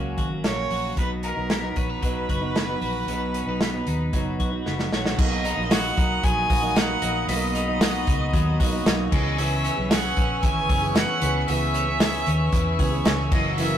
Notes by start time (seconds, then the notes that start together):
Already playing: C#2 F#2 C#3 F#3 A#3 C#4 F#4
0.18 G#1 F#4, kick, closed hi-hat
0.30 F#3 A#3 C#4
0.44 A#1 A#3 C#5, snare, closed hi-hat
0.56 F#3 A#3 C#4
0.70 A#1 F#4, open hi-hat
0.96 B1 B2 F#3 B3 D#4 B4, kick, closed hi-hat
1.23 D#4 A#4, closed hi-hat
1.36 B1 F#3 B3 D#4
1.50 B3, snare, closed hi-hat
1.62 F#3 B3 D#4
1.76 A#1 C#4 B4, kick, closed hi-hat
1.89 D#4
2.02 B1 B2 F#3 B3 D#4, kick, closed hi-hat
2.29 F#1 F#4, kick, closed hi-hat
2.41 F#3 B3 D#4
2.56 B3, snare, closed hi-hat
2.68 F#3 B3 D#4
2.81 A#1 F#4, open hi-hat
3.08 B1 B2 F#3 B3 D#4, closed hi-hat
3.34 C#4, closed hi-hat
3.47 B1 F#3 B3 D#4
3.61 B3, snare, closed hi-hat
3.74 F#3 B3 D#4
3.87 D#2 D#4, closed hi-hat
4.13 F#1 B2 F#3 B3 D#4, kick, closed hi-hat
4.40 B1 F#4, kick, closed hi-hat
4.51 F#3 B3 D#4
4.66 F#1 B3, snare
4.78 F#3 B3 D#4, snare
4.92 A#1 F#4 C#5, snare
5.06 snare
5.17 B1 B2 F#3 A#3 D#4 D#5 F#5 B5 D#6, kick, crash, tambourine
5.44 D#4, hi-hat pedal, open hi-hat, tambourine
5.57 A#1 F#3 A#3 D#4
5.71 F#4 F#5, snare, hi-hat pedal, open hi-hat, tambourine
5.97 B1 D#4, kick, hi-hat pedal, open hi-hat, tambourine
6.23 A#1 F#3 G#5, kick, hi-hat pedal, open hi-hat, tambourine
6.48 A#1 B2 F#3 A#3 D#4 F#4, kick, hi-hat pedal, open hi-hat, tambourine
6.62 F#3 A#3 D#4
6.75 B2 F#3 A#3 D#4 F#5, snare, hi-hat pedal, open hi-hat, tambourine
7.02 A#1 B2 F#3 A#3 D#4, hi-hat pedal, open hi-hat, tambourine
7.28 B1 B2 F#3 A#3 D#4 D#5, hi-hat pedal, open hi-hat, tambourine
7.55 D#4, hi-hat pedal, open hi-hat, tambourine
7.68 F#3 A#3 D#4
7.81 F#4, snare, hi-hat pedal, open hi-hat, tambourine
8.07 C#2 D#4, kick, hi-hat pedal, open hi-hat
8.33 D#2 F#3, kick, hi-hat pedal, open hi-hat
8.59 B1 B2 F#3 A#3 D#4 F#4, kick, hi-hat pedal, open hi-hat, tambourine
8.72 F#3 A#3 D#4
8.85 B1 B2 F#3 A#3 D#4, snare, hi-hat pedal, open hi-hat, tambourine
9.12 C#2 C#3 E3 B3 C#4 G#4 B4 D#5 G#5 C#6 E6, kick, tambourine, crash
9.38 C#3 E3 B3 C#4 G#4 E5, hi-hat pedal, open hi-hat, tambourine
9.64 C#4, hi-hat pedal, open hi-hat, tambourine
9.77 B1 B3 C#4 G#4
9.91 G#4 F#5, snare, hi-hat pedal, open hi-hat, tambourine
10.17 A#1 C#4, kick, hi-hat pedal, open hi-hat
10.43 G#1 E3 G#5, kick, hi-hat pedal, open hi-hat, tambourine
10.69 F#1 E3 B3 C#4 G#4, kick, hi-hat pedal, open hi-hat, tambourine
10.82 B3 C#4 G#4
10.95 E3 B3 C#4 G#4 F#5, snare, hi-hat pedal, open hi-hat, tambourine
11.21 C#2 E3 B3 C#4 G#4, hi-hat pedal, open hi-hat, tambourine
11.48 C#2 C#3 E3 B3 C#4 G#4 E5, hi-hat pedal, open hi-hat, tambourine
11.74 C#4, hi-hat pedal, open hi-hat, tambourine
11.87 B3 C#4 G#4
12.00 G#4, snare, hi-hat pedal, open hi-hat, tambourine
12.26 D#2 C#4, hi-hat pedal, open hi-hat
12.52 E2 E3, kick, hi-hat pedal, open hi-hat, tambourine
12.79 C#2 E3 B3 C#4 G#4, kick, hi-hat pedal, open hi-hat, tambourine
12.91 B3 C#4 G#4
13.04 C#2 E3 B3 C#4 G#4, snare, hi-hat pedal, open hi-hat, tambourine
13.31 F#1 F#2 C#3 E3 A#3 E4 A#4 D#5 F#5, kick, tambourine, crash
13.57 F#2 C#3 E3 A#3 E4 E5, hi-hat pedal, open hi-hat, tambourine